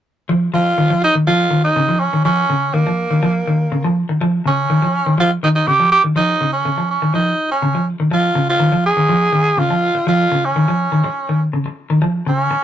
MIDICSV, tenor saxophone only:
0, 0, Header, 1, 2, 480
1, 0, Start_track
1, 0, Tempo, 488599
1, 283, Time_signature, 4, 2, 24, 8
1, 12416, End_track
2, 0, Start_track
2, 0, Title_t, "Tenor saxophone"
2, 0, Program_c, 0, 66
2, 531, Note_on_c, 0, 65, 101
2, 974, Note_off_c, 0, 65, 0
2, 1020, Note_on_c, 0, 63, 96
2, 1124, Note_off_c, 0, 63, 0
2, 1251, Note_on_c, 0, 65, 99
2, 1583, Note_off_c, 0, 65, 0
2, 1611, Note_on_c, 0, 63, 85
2, 1957, Note_on_c, 0, 61, 79
2, 1972, Note_off_c, 0, 63, 0
2, 2200, Note_off_c, 0, 61, 0
2, 2208, Note_on_c, 0, 61, 93
2, 2690, Note_on_c, 0, 58, 75
2, 2705, Note_off_c, 0, 61, 0
2, 3887, Note_off_c, 0, 58, 0
2, 4391, Note_on_c, 0, 61, 84
2, 5058, Note_off_c, 0, 61, 0
2, 5108, Note_on_c, 0, 65, 95
2, 5211, Note_off_c, 0, 65, 0
2, 5343, Note_on_c, 0, 63, 89
2, 5393, Note_off_c, 0, 63, 0
2, 5457, Note_on_c, 0, 63, 86
2, 5571, Note_on_c, 0, 67, 97
2, 5585, Note_off_c, 0, 63, 0
2, 5807, Note_off_c, 0, 67, 0
2, 5814, Note_on_c, 0, 67, 102
2, 5920, Note_off_c, 0, 67, 0
2, 6060, Note_on_c, 0, 63, 94
2, 6388, Note_off_c, 0, 63, 0
2, 6410, Note_on_c, 0, 61, 86
2, 6742, Note_off_c, 0, 61, 0
2, 6784, Note_on_c, 0, 61, 79
2, 6998, Note_off_c, 0, 61, 0
2, 7018, Note_on_c, 0, 63, 86
2, 7347, Note_off_c, 0, 63, 0
2, 7380, Note_on_c, 0, 61, 73
2, 7707, Note_off_c, 0, 61, 0
2, 7992, Note_on_c, 0, 65, 92
2, 8314, Note_off_c, 0, 65, 0
2, 8344, Note_on_c, 0, 65, 100
2, 8669, Note_off_c, 0, 65, 0
2, 8704, Note_on_c, 0, 68, 104
2, 9420, Note_on_c, 0, 65, 90
2, 9434, Note_off_c, 0, 68, 0
2, 9891, Note_off_c, 0, 65, 0
2, 9902, Note_on_c, 0, 65, 99
2, 10264, Note_on_c, 0, 61, 81
2, 10279, Note_off_c, 0, 65, 0
2, 11214, Note_off_c, 0, 61, 0
2, 12069, Note_on_c, 0, 61, 79
2, 12416, Note_off_c, 0, 61, 0
2, 12416, End_track
0, 0, End_of_file